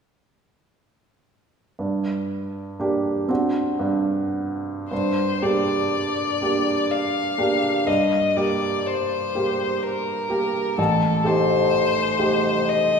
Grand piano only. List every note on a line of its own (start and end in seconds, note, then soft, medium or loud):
1.79 2.77 G2 soft
2.80 3.25 A#3 soft
2.80 3.25 D4 soft
2.80 3.26 G4 soft
3.29 4.87 C4 soft
3.29 4.87 D4 soft
3.29 4.88 F#4 soft
3.79 4.87 G2 soft
4.91 5.41 G2 soft
5.42 6.37 A#3 soft
5.42 6.37 D4 soft
5.42 6.37 G4 soft
6.42 7.35 A#3 soft
6.42 7.35 D4 soft
6.42 7.35 G4 soft
7.38 7.83 A#3 soft
7.38 7.83 D4 soft
7.38 7.83 G4 soft
7.87 8.35 G2 soft
8.37 9.32 A#3 soft
8.37 9.32 G4 soft
9.35 10.26 A#3 soft
9.35 10.26 G4 soft
10.30 10.74 A#3 soft
10.30 10.74 G4 soft
10.78 11.24 A1 soft
11.24 12.16 A3 soft
11.24 12.16 D#4 soft
11.24 12.16 G4 soft
12.19 13.00 A3 soft
12.19 13.00 D#4 soft
12.19 13.00 G4 soft